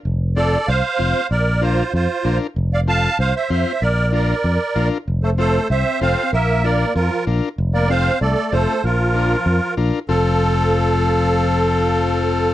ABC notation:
X:1
M:4/4
L:1/8
Q:1/4=191
K:F
V:1 name="Accordion"
z2 [Ad]2 [cf]4 | [Bd]2 [Fc]2 [Fc]3 z | z [df] [fa]2 [cf] [ce] [ce]2 | [Bd]2 [Bd]4- [Bd] z |
z [Ac] [Ac]2 [ce]2 [cf]2 | [Be]2 [Bd]2 [FB]2 z2 | z [Bd] [cf]2 [Ad]2 [Ac]2 | [FB]6 z2 |
A8- | A8 |]
V:2 name="Transistor combo organ"
z2 [CFA] z3 [CFc] z | z2 [DFB] z3 [DFB] z | z2 [CFA] z3 [CFc] z | z2 [DFB] z3 [DFB] z |
z2 [CFA] z3 [CFA] z | z2 [DFB] z3 [DFB] z | z2 [CFA] z3 [CFA] z | z2 [DFB] z3 [DFB] z |
[CFA]8- | [CFA]8 |]
V:3 name="Trombone"
z8 | z8 | z8 | z8 |
z A, A,2 C2 C2 | B,2 B,2 F,2 z2 | z B, C2 A,2 A,2 | F,6 z2 |
F,8- | F,8 |]
V:4 name="Fingered electric bass" clef=bass
F,,,4 C,, z F,,, z | B,,,4 F,, z B,,, z | F,,,4 C,, z F,, z | B,,,4 F,, z B,,, z |
F,,,4 C,, z F,,, z | B,,,4 F,, z B,,, z | F,,,4 C,, z F,,, z | B,,,4 F,, z B,,, z |
F,,,8- | F,,,8 |]